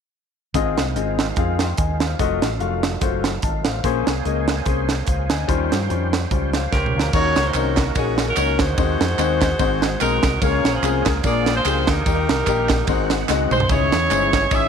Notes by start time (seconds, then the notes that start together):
0.54 G#1 G#2 D#3 G#3 C4 F4 G#4 D#5, kick, closed hi-hat
0.77 C2, snare, closed hi-hat
0.96 G#1 C4 F4 G#4 D#5, closed hi-hat
1.19 snare, closed hi-hat
1.36 F2 C4 F4 G#4 F5, kick, closed hi-hat
1.59 G5 C6, snare, closed hi-hat
1.77 D#2 D#5 G#5, kick, closed hi-hat
2.00 C5 F5, snare, closed hi-hat
2.19 F1 D#3 F#3 A3 F4 F#4 D#5, kick, closed hi-hat
2.42 A1, snare, closed hi-hat
2.60 F1 A3 F4 F#4 F5, closed hi-hat
2.83 snare, closed hi-hat
3.01 F#1 A3 F4 F#4 C5, kick, closed hi-hat
3.24 snare, closed hi-hat
3.42 G#1 D#5 A5, kick, closed hi-hat
3.65 A1 C5 F5, snare, closed hi-hat
3.84 A#1 A#2 A#3 C#4 G#4 C5, kick, closed hi-hat
4.07 C2, snare, closed hi-hat
4.25 C#2 A#3 C#4 G#4 D#5, closed hi-hat
4.48 snare, closed hi-hat
4.66 C2 A#3 C#4 G#4 C5, kick, closed hi-hat
4.89 snare, closed hi-hat
5.07 C#2 C5 F5, kick, closed hi-hat
5.30 D2 D#5 G#5, snare, closed hi-hat
5.48 D#2 D#3 F3 G3 C#4 F4 G4 C5, kick, closed hi-hat
5.72 G2, snare, closed hi-hat
5.90 F2 G3 C#4 F4 C5, closed hi-hat
6.13 snare, closed hi-hat
6.31 C#2 G3 C#4 F4 C5, kick, closed hi-hat
6.53 C5 F5, snare, closed hi-hat
6.72 C#2 C#4 G4 A#4 G5 C6, kick, snare
6.86 mid tom
6.95 D2 F5 A#5
6.99 snare
7.13 D#2 D#3 A#3 C#4 D#4 F#4 A#4 C#5, kick, crash, tambourine
7.36 C#2, snare, ride, tambourine
7.46 F#4 C5
7.54 C2 A#3 C#4 D#4 F#4 C#5, clap, ride, tambourine
7.77 A#4, kick, snare, clap, ride, tambourine
7.95 A#1 A#3 C#4 D#4 F#4 G#4 C#5, kick, ride, tambourine
8.18 snare, ride, tambourine
8.28 C#4 F#4 A#4
8.36 C#2 A#3 C#4 D#4 F#4 C#5, clap, ride, tambourine
8.59 D2 F#4 G#4 C5, kick, snare, ride, tambourine
8.77 D#2 D#3 G#3 C4 D#4 F#4 C5, kick, ride, tambourine
9.01 F2, snare, ride, tambourine
9.18 D#2 G#3 C4 D#4 F#4 C5, clap, ride, tambourine
9.41 kick, snare, clap, ride, tambourine
9.59 G#1 G#2 G#3 C4 D#4 F#4 C5, kick, ride, tambourine
9.82 snare, ride, tambourine
10.00 B1 G#3 C4 D#4 F#4 A#4 C5, clap, ride, tambourine
10.23 C2, kick, snare, ride, tambourine
10.41 C#2 C#3 F3 G#3 A#3 C#4 F4 G#4 A#4 C#5, kick, ride, tambourine
10.64 A#1, snare, ride, tambourine
10.72 F4 G#4 C5
10.82 C2 G#3 A#3 C#4 F4 G#4, clap, ride, tambourine
11.05 C#2 A#4, kick, snare, clap, ride, tambourine
11.23 A#1 A#2 G#3 A#3 D4 F4 G#4 A#4 D5, kick, ride, tambourine
11.46 snare, ride, tambourine
11.56 F4 G#4 C5
11.65 C#2 G#3 A#3 D4 F4 G4, clap, ride, tambourine
11.87 D2 D#4 G4 A#4, kick, snare, ride, tambourine
12.06 D#2 D#3 G3 A#3 D#4 G4, kick, ride, tambourine
12.29 C2, snare, ride, tambourine
12.47 A#1 A#3 D#4 G4, kick, clap, ride, tambourine
12.69 kick, snare, clap, ride, tambourine
12.87 G#1 G#2 G#3 C4 D#4 F#4 C5 F#5, kick, ride, tambourine
13.10 snare, ride, tambourine
13.29 C#2 G#3 C4 D#4 F#4 D#5, snare, clap, tambourine
13.51 C2 C5, mid tom, tambourine
13.60 floor tom
13.69 C#2 C#3 E3 G#3 C#4 D#4 E4 G#4 C#5, kick, ride, tambourine
13.92 E2, snare, ride, tambourine
14.10 G1 G#3 C#4 D#4 E4 C5, clap, ride, tambourine
14.33 kick, snare, clap, ride, tambourine
14.51 G#1 G#3 C#4 D#4 E4 G#4 C#5 E5, kick, ride, tambourine